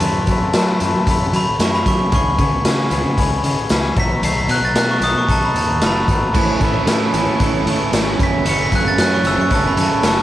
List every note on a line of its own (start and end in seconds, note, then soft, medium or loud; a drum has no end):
0.00 0.25 F#2 loud
0.00 0.27 F#2 medium
0.00 0.28 C#3 medium
0.00 0.29 E3 loud
0.00 0.29 A3 loud
0.00 0.30 E4 loud
0.00 closed hi-hat loud
0.00 tambourine medium
0.27 0.53 F#2 medium
0.27 0.54 C#3 medium
0.27 0.55 E3 medium
0.27 0.40 F#3 medium
0.27 0.55 A3 medium
0.27 0.56 E4 loud
0.27 kick medium
0.27 closed hi-hat medium
0.27 tambourine medium
0.41 0.53 F#2 medium
0.54 0.79 F#2 medium
0.54 0.80 C#3 medium
0.54 0.80 E3 medium
0.54 0.78 F#3 medium
0.54 0.81 A3 loud
0.54 0.82 E4 loud
0.54 snare loud
0.54 closed hi-hat loud
0.54 tambourine loud
0.80 1.06 F#2 loud
0.80 0.93 F#2 medium
0.80 1.07 C#3 medium
0.80 1.08 E3 medium
0.80 1.08 A3 loud
0.80 1.08 E4 loud
0.80 closed hi-hat medium
0.80 tambourine medium
0.94 1.06 F#3 medium
1.07 1.31 F#2 loud
1.07 1.33 F#2 medium
1.07 1.34 C#3 medium
1.07 1.34 E3 loud
1.07 1.35 A3 loud
1.07 1.35 E4 loud
1.07 kick medium
1.07 closed hi-hat loud
1.07 tambourine soft
1.33 1.59 F#2 medium
1.33 1.60 C#3 medium
1.33 1.60 E3 medium
1.33 1.45 F#3 loud
1.33 1.61 A3 medium
1.33 1.62 E4 medium
1.33 1.61 B5 medium
1.33 closed hi-hat medium
1.59 1.83 F#2 medium
1.59 1.85 F#2 medium
1.59 1.86 C#3 medium
1.59 1.86 E3 medium
1.59 1.87 A3 medium
1.59 1.87 E4 medium
1.59 1.73 C#6 medium
1.59 snare loud
1.59 closed hi-hat medium
1.59 tambourine loud
1.75 1.86 B5 medium
1.86 2.11 F#2 medium
1.86 2.11 C#3 medium
1.86 2.12 E3 medium
1.86 2.10 F#3 medium
1.86 2.12 A3 medium
1.86 2.12 E4 medium
1.86 2.13 C#6 medium
1.86 kick medium
1.86 closed hi-hat medium
1.86 tambourine medium
2.12 2.37 C#2 loud
2.12 2.37 C#3 medium
2.12 2.38 E3 loud
2.12 2.39 B3 medium
2.12 2.39 C#4 loud
2.12 2.40 G#4 loud
2.12 3.68 C#6 medium
2.12 kick loud
2.12 closed hi-hat loud
2.12 tambourine medium
2.39 2.64 C#3 medium
2.39 2.51 C#3 loud
2.39 2.64 E3 medium
2.39 2.66 B3 loud
2.39 2.65 C#4 loud
2.39 2.66 G#4 medium
2.39 kick medium
2.39 closed hi-hat medium
2.39 tambourine medium
2.51 2.64 C#2 medium
2.65 2.89 C#3 loud
2.65 2.90 C#3 medium
2.65 2.90 E3 medium
2.65 2.92 B3 loud
2.65 2.91 C#4 medium
2.65 2.92 G#4 loud
2.65 snare loud
2.65 closed hi-hat loud
2.65 tambourine medium
2.65 tambourine loud
2.90 3.03 C#2 medium
2.90 3.16 C#3 medium
2.90 3.17 E3 medium
2.90 3.17 B3 medium
2.90 3.18 C#4 medium
2.90 3.18 G#4 loud
2.90 closed hi-hat medium
2.90 tambourine medium
3.04 3.17 C#3 medium
3.17 3.42 C#2 loud
3.17 3.43 C#3 loud
3.17 3.44 E3 loud
3.17 3.44 B3 loud
3.17 3.44 C#4 loud
3.17 3.45 G#4 loud
3.17 kick medium
3.17 closed hi-hat loud
3.17 tambourine soft
3.44 3.69 C#3 medium
3.44 3.56 C#3 medium
3.44 3.70 E3 medium
3.44 3.70 B3 medium
3.44 3.71 C#4 loud
3.44 3.72 G#4 medium
3.44 closed hi-hat medium
3.69 3.95 C#2 medium
3.69 3.95 C#3 medium
3.69 3.96 E3 medium
3.69 3.96 B3 medium
3.69 3.96 C#4 loud
3.69 3.97 G#4 loud
3.69 snare loud
3.69 closed hi-hat loud
3.69 tambourine medium
3.69 tambourine loud
3.96 4.21 B1 medium
3.96 4.22 B2 medium
3.96 4.22 F#3 loud
3.96 4.24 A3 medium
3.96 4.23 D#4 loud
3.96 4.25 A4 loud
3.96 4.11 B6 medium
3.96 kick loud
3.96 closed hi-hat medium
3.96 tambourine medium
4.22 4.47 B1 loud
4.22 4.48 B2 medium
4.22 4.49 F#3 medium
4.22 4.50 A3 medium
4.22 4.50 D#4 loud
4.22 4.51 A4 loud
4.22 4.37 C7 loud
4.22 closed hi-hat loud
4.22 tambourine medium
4.38 4.50 B6 medium
4.48 4.61 B2 loud
4.48 4.74 B2 medium
4.48 4.74 F#3 medium
4.48 4.76 A3 loud
4.48 4.76 D#4 medium
4.48 4.77 A4 loud
4.48 4.63 F#6 medium
4.48 closed hi-hat medium
4.48 tambourine medium
4.61 4.74 B1 medium
4.61 4.77 A6 medium
4.75 5.01 B2 medium
4.75 5.00 B2 loud
4.75 5.01 F#3 medium
4.75 5.03 A3 medium
4.75 5.02 D#4 medium
4.75 5.04 A4 medium
4.75 4.90 F#6 loud
4.75 snare loud
4.75 closed hi-hat loud
4.75 tambourine loud
4.75 tambourine medium
4.91 5.03 C#6 medium
5.00 5.14 B1 loud
5.00 5.27 B2 loud
5.00 5.28 F#3 medium
5.00 5.29 A3 medium
5.00 5.29 D#4 loud
5.00 5.30 A4 loud
5.00 5.16 D#6 medium
5.00 closed hi-hat medium
5.00 tambourine medium
5.14 5.27 B2 medium
5.14 5.29 C#6 medium
5.28 5.53 B1 medium
5.28 5.53 B2 loud
5.28 5.54 F#3 loud
5.28 5.56 A3 loud
5.28 5.56 D#4 loud
5.28 5.57 A4 loud
5.28 5.43 A5 loud
5.28 kick medium
5.28 closed hi-hat loud
5.28 tambourine soft
5.45 5.56 B5 medium
5.54 5.79 D#2 medium
5.54 5.81 B2 medium
5.54 5.82 F#3 medium
5.54 5.83 A3 medium
5.54 5.82 D#4 medium
5.54 5.84 A4 medium
5.54 closed hi-hat medium
5.54 tambourine soft
5.58 5.83 A5 medium
5.80 6.05 F#1 medium
5.80 6.07 B2 medium
5.80 6.08 F#3 medium
5.80 6.10 A3 medium
5.80 6.09 D#4 medium
5.80 snare loud
5.80 closed hi-hat loud
5.80 tambourine loud
5.80 tambourine medium
5.84 6.10 A4 medium
5.84 6.36 B5 medium
6.08 6.32 G#1 medium
6.08 6.33 B2 medium
6.08 6.34 F#3 medium
6.08 6.36 A3 medium
6.08 6.34 D#4 medium
6.08 6.37 A4 medium
6.08 kick medium
6.08 closed hi-hat medium
6.08 tambourine medium
6.34 6.59 A1 loud
6.34 6.60 A2 medium
6.34 6.62 E3 medium
6.34 6.63 A3 medium
6.34 6.63 C#4 medium
6.34 6.64 E4 loud
6.34 6.64 A4 loud
6.34 kick loud
6.34 tambourine medium
6.34 crash loud
6.61 6.73 A2 loud
6.61 6.86 A2 medium
6.61 6.88 E3 medium
6.61 6.88 A3 loud
6.61 6.89 C#4 medium
6.61 6.89 E4 loud
6.61 6.90 A4 loud
6.61 kick medium
6.61 closed hi-hat medium
6.61 tambourine medium
6.73 6.85 A1 medium
6.86 7.11 A2 loud
6.86 7.12 A2 medium
6.86 7.14 E3 medium
6.86 7.14 A3 medium
6.86 7.15 C#4 medium
6.86 7.15 E4 medium
6.86 snare loud
6.86 closed hi-hat loud
6.86 tambourine loud
6.86 tambourine medium
6.90 7.16 A4 medium
7.13 7.26 A1 medium
7.13 7.39 A2 medium
7.13 7.41 E3 medium
7.13 7.41 A3 medium
7.13 7.42 C#4 medium
7.13 7.43 E4 medium
7.13 7.42 A4 medium
7.13 closed hi-hat medium
7.13 tambourine medium
7.26 7.39 A2 medium
7.40 7.64 A1 medium
7.40 7.65 A2 loud
7.40 7.67 E3 loud
7.40 7.67 A3 loud
7.40 7.68 C#4 loud
7.40 7.69 E4 loud
7.40 7.69 A4 loud
7.40 kick medium
7.40 closed hi-hat loud
7.40 tambourine soft
7.66 7.78 A2 medium
7.66 7.92 A2 medium
7.66 7.93 E3 medium
7.66 7.93 A3 medium
7.66 7.95 C#4 loud
7.66 7.95 E4 loud
7.66 7.95 A4 medium
7.66 closed hi-hat medium
7.92 8.17 G#1 medium
7.92 8.18 A2 medium
7.92 8.20 E3 medium
7.92 8.19 A3 medium
7.92 8.21 C#4 medium
7.92 8.22 E4 loud
7.92 8.20 A4 medium
7.92 snare loud
7.92 closed hi-hat loud
7.92 tambourine loud
8.19 8.44 F#1 medium
8.19 8.44 F#2 medium
8.19 8.45 C#3 medium
8.19 8.46 E3 medium
8.19 8.44 F#3 loud
8.19 8.46 A3 medium
8.19 8.47 C#4 loud
8.19 8.47 A4 loud
8.19 8.34 B6 loud
8.19 kick loud
8.19 closed hi-hat medium
8.19 tambourine medium
8.45 8.69 F#1 loud
8.45 8.72 F#2 loud
8.45 8.72 C#3 medium
8.45 8.74 E3 loud
8.45 8.71 F#3 loud
8.45 8.73 A3 loud
8.45 8.74 C#4 loud
8.45 8.74 A4 loud
8.45 closed hi-hat loud
8.45 tambourine medium
8.49 8.60 C#7 medium
8.62 8.73 B6 medium
8.72 8.84 F#2 loud
8.72 8.97 F#2 medium
8.72 8.98 C#3 medium
8.72 8.99 E3 medium
8.72 8.97 F#3 medium
8.72 8.99 A3 medium
8.72 9.00 C#4 medium
8.72 9.00 A4 loud
8.72 8.86 F#6 medium
8.72 kick medium
8.72 closed hi-hat medium
8.72 tambourine medium
8.85 8.97 F#1 medium
8.85 8.99 A6 medium
8.98 9.22 F#2 medium
8.98 9.23 F#2 medium
8.98 9.24 C#3 medium
8.98 9.24 E3 medium
8.98 9.25 F#3 medium
8.98 9.25 A3 medium
8.98 9.25 C#4 medium
8.98 9.26 A4 loud
8.98 9.12 F#6 loud
8.98 snare loud
8.98 closed hi-hat loud
8.98 tambourine loud
8.98 tambourine medium
9.14 9.25 C#6 medium
9.24 9.36 F#1 medium
9.24 9.49 F#2 medium
9.24 9.50 C#3 medium
9.24 9.50 E3 medium
9.24 9.52 F#3 medium
9.24 9.51 A3 medium
9.24 9.51 C#4 loud
9.24 9.52 A4 loud
9.24 9.38 E6 medium
9.24 closed hi-hat medium
9.24 tambourine medium
9.37 9.50 F#2 medium
9.37 9.52 C#6 medium
9.50 9.75 F#1 medium
9.50 9.76 F#2 loud
9.50 9.77 C#3 loud
9.50 9.77 E3 loud
9.50 9.77 F#3 loud
9.50 9.78 A3 loud
9.50 9.78 C#4 loud
9.50 9.79 A4 loud
9.50 kick medium
9.50 closed hi-hat loud
9.50 tambourine soft
9.54 9.65 A5 medium
9.68 9.79 B5 medium
9.77 9.89 F#2 medium
9.77 10.02 F#2 medium
9.77 10.03 C#3 medium
9.77 10.04 E3 medium
9.77 10.04 F#3 loud
9.77 10.04 A3 medium
9.77 10.05 C#4 medium
9.77 10.05 A4 loud
9.77 closed hi-hat medium
9.81 10.05 A5 loud
10.03 10.22 F#1 medium
10.03 10.22 F#2 medium
10.03 10.22 C#3 medium
10.03 10.22 E3 medium
10.03 10.22 F#3 loud
10.03 10.22 A3 medium
10.03 10.22 C#4 medium
10.03 10.22 A4 medium
10.03 10.22 C#6 medium
10.03 snare loud
10.03 closed hi-hat loud
10.03 tambourine loud
10.17 snare soft